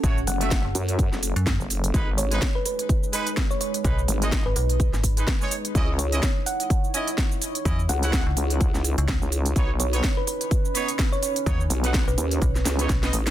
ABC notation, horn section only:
X:1
M:4/4
L:1/16
Q:"Swing 16ths" 1/4=126
K:G#phr
V:1 name="Horn section"
[A,Fc] z2 [A,Fe]2 z8 z3 | [G,DB] z2 [G,DB] z6 [G,DB] z4 z | [G,DB] z2 [G,Dd]2 z6 [G,DB] z [G,Dc] z2 | [CEd] z2 [CEd] z6 [CEd] z4 z |
[CEd] z2 [CEf]2 z8 z3 | [B,Dc] z2 [B,Dc] z6 [B,Dc] z4 z | [B,Dc] z2 [B,Df]2 z6 [B,Dc] z [B,Dd] z2 |]